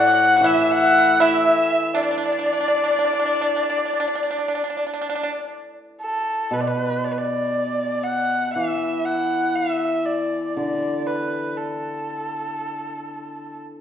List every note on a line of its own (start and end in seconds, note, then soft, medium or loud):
0.00 1.43 A2 medium
0.00 0.33 F#4 loud
0.00 0.44 F#5 medium
0.00 0.48 F#5 loud
0.36 0.43 F#4 medium
0.41 3.43 E3 medium
0.41 1.15 E4 loud
0.41 1.18 E5 medium
0.46 0.73 E5 loud
0.71 1.23 F#5 loud
1.18 1.90 E4 loud
1.18 1.89 E5 medium
1.18 1.98 E5 loud
1.93 2.01 D4 medium
1.93 5.45 D5 medium
1.93 5.51 D5 medium
2.03 2.09 D4 medium
2.11 2.16 D4 medium
2.17 2.24 D4 medium
2.26 2.31 D4 medium
2.32 2.37 D4 medium
2.39 2.45 D4 medium
2.46 2.52 D4 medium
2.53 2.59 D4 medium
2.61 2.67 D4 medium
2.68 2.73 D4 medium
2.75 2.82 D4 medium
2.84 2.89 D4 medium
2.91 2.97 D4 medium
2.99 3.03 D4 medium
3.05 3.12 D4 medium
3.13 3.18 D4 medium
3.20 3.24 D4 medium
3.25 3.33 D4 medium
3.35 3.40 D4 medium
3.41 3.47 D4 medium
3.48 3.55 D4 soft
3.56 3.62 D4 soft
3.63 3.68 D4 soft
3.70 3.77 D4 medium
3.78 3.84 D4 medium
3.85 3.92 D4 soft
3.93 3.99 D4 soft
4.00 4.06 D4 medium
4.08 4.14 D4 medium
4.15 4.22 D4 medium
4.23 4.29 D4 soft
4.31 4.37 D4 medium
4.38 4.46 D4 medium
4.48 4.54 D4 medium
4.55 4.62 D4 soft
4.64 4.69 D4 medium
4.70 4.76 D4 medium
4.77 4.84 D4 medium
4.87 4.92 D4 medium
4.94 5.00 D4 medium
5.01 5.08 D4 medium
5.10 5.14 D4 medium
5.15 5.22 D4 medium
5.23 5.30 D4 medium
6.01 6.55 A4 medium
6.51 8.56 B2 medium
6.51 6.62 B4 medium
6.61 6.69 D5 medium
6.68 7.06 B4 medium
7.04 7.14 D5 medium
7.12 7.19 B4 medium
7.18 8.05 D5 medium
8.03 8.53 F#5 medium
8.54 11.57 E3 soft
8.54 9.07 E5 medium
9.05 9.57 F#5 medium
9.55 10.07 E5 medium
10.06 10.56 D5 medium
10.57 13.56 D3 soft
10.57 11.09 D5 medium
11.07 11.58 B4 medium
11.57 13.55 A4 medium